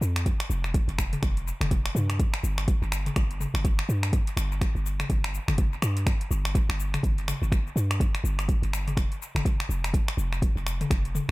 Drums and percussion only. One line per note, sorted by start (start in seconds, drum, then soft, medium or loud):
0.02 cabasa medium
0.16 finger snap medium
0.16 closed hi-hat soft
0.16 cabasa soft
0.26 kick loud
0.26 closed hi-hat medium
0.26 cabasa soft
0.40 finger snap loud
0.40 closed hi-hat soft
0.40 cabasa soft
0.51 cabasa medium
0.64 finger snap medium
0.64 cabasa soft
0.74 kick loud
0.74 closed hi-hat medium
0.74 cabasa soft
0.89 closed hi-hat soft
0.89 cabasa soft
0.98 finger snap medium
0.98 kick medium
0.98 cabasa medium
1.13 closed hi-hat soft
1.13 mid tom medium
1.13 cabasa soft
1.23 finger snap medium
1.23 kick loud
1.23 closed hi-hat medium
1.23 cabasa soft
1.37 closed hi-hat soft
1.37 cabasa soft
1.48 cabasa medium
1.61 finger snap medium
1.61 closed hi-hat soft
1.61 mid tom medium
1.61 cabasa soft
1.71 kick loud
1.71 closed hi-hat medium
1.71 cabasa soft
1.86 finger snap loud
1.86 closed hi-hat soft
1.86 cabasa soft
1.96 mid tom medium
1.96 cabasa medium
2.10 finger snap medium
2.10 closed hi-hat soft
2.10 cabasa soft
2.19 kick loud
2.19 closed hi-hat medium
2.19 cabasa medium
2.34 finger snap medium
2.34 closed hi-hat soft
2.34 cabasa soft
2.44 cabasa medium
2.58 finger snap medium
2.58 cabasa soft
2.68 kick loud
2.68 closed hi-hat medium
2.68 cabasa medium
2.83 cabasa soft
2.92 finger snap medium
2.92 cabasa medium
3.06 closed hi-hat soft
3.06 mid tom medium
3.06 cabasa soft
3.16 finger snap medium
3.16 kick loud
3.16 closed hi-hat medium
3.16 cabasa medium
3.31 closed hi-hat soft
3.31 cabasa soft
3.40 mid tom medium
3.40 cabasa medium
3.55 finger snap medium
3.55 cabasa soft
3.65 kick loud
3.65 closed hi-hat medium
3.65 cabasa medium
3.79 finger snap loud
3.79 cabasa soft
3.90 cabasa medium
4.03 finger snap medium
4.03 closed hi-hat soft
4.03 cabasa soft
4.13 kick loud
4.13 closed hi-hat medium
4.13 cabasa medium
4.27 closed hi-hat soft
4.27 cabasa soft
4.37 finger snap medium
4.37 cabasa loud
4.52 cabasa soft
4.61 finger snap medium
4.61 kick loud
4.61 closed hi-hat medium
4.61 cabasa soft
4.76 cabasa soft
4.86 cabasa medium
5.00 finger snap loud
5.00 closed hi-hat soft
5.00 mid tom medium
5.00 cabasa soft
5.10 kick loud
5.10 closed hi-hat medium
5.10 cabasa medium
5.24 finger snap medium
5.24 closed hi-hat soft
5.24 cabasa soft
5.35 cabasa medium
5.48 finger snap medium
5.48 mid tom medium
5.48 cabasa soft
5.58 kick loud
5.58 closed hi-hat medium
5.58 cabasa medium
5.73 cabasa soft
5.82 finger snap medium
5.82 cabasa medium
5.97 closed hi-hat soft
5.97 cabasa soft
6.07 finger snap medium
6.07 kick loud
6.07 closed hi-hat medium
6.07 cabasa medium
6.21 closed hi-hat soft
6.21 cabasa soft
6.31 cabasa medium
6.45 finger snap medium
6.45 cabasa soft
6.55 kick loud
6.55 closed hi-hat medium
6.55 cabasa medium
6.70 finger snap medium
6.70 cabasa soft
6.80 cabasa loud
6.94 finger snap medium
6.94 closed hi-hat soft
6.94 mid tom medium
6.94 cabasa soft
7.03 kick loud
7.03 closed hi-hat medium
7.03 cabasa medium
7.18 closed hi-hat soft
7.18 cabasa soft
7.28 finger snap medium
7.28 mid tom medium
7.28 cabasa medium
7.43 cabasa soft
7.52 finger snap medium
7.52 kick loud
7.52 closed hi-hat medium
7.52 cabasa medium
7.67 cabasa soft
7.77 cabasa loud
7.91 finger snap loud
7.91 closed hi-hat soft
7.91 cabasa soft
8.00 kick loud
8.00 closed hi-hat medium
8.00 cabasa medium
8.15 finger snap medium
8.15 closed hi-hat soft
8.15 cabasa soft
8.25 cabasa medium
8.39 finger snap medium
8.39 closed hi-hat soft
8.39 cabasa soft
8.49 kick loud
8.49 closed hi-hat medium
8.49 cabasa medium
8.63 closed hi-hat soft
8.63 cabasa soft
8.73 finger snap medium
8.73 cabasa medium
8.88 closed hi-hat soft
8.88 mid tom medium
8.88 cabasa soft
8.97 finger snap medium
8.97 kick loud
8.97 closed hi-hat medium
8.97 cabasa medium
9.12 closed hi-hat soft
9.12 cabasa soft
9.22 cabasa medium
9.36 finger snap medium
9.36 mid tom medium
9.36 cabasa soft
9.45 kick loud
9.45 closed hi-hat medium
9.45 cabasa medium
9.60 finger snap medium
9.60 cabasa soft
9.71 cabasa loud
9.84 finger snap medium
9.84 closed hi-hat soft
9.84 cabasa soft
9.94 kick loud
9.94 closed hi-hat medium
9.94 cabasa medium
10.08 finger snap medium
10.08 closed hi-hat soft
10.08 cabasa soft
10.19 cabasa medium
10.33 finger snap medium
10.33 cabasa soft
10.42 kick loud
10.42 closed hi-hat medium
10.42 cabasa soft
10.57 cabasa soft
10.67 finger snap medium
10.67 cabasa medium
10.81 closed hi-hat soft
10.81 mid tom medium
10.81 cabasa soft
10.91 finger snap medium
10.91 kick loud
10.91 closed hi-hat medium
10.91 cabasa medium
11.05 closed hi-hat soft
11.05 cabasa soft
11.15 mid tom medium
11.15 cabasa medium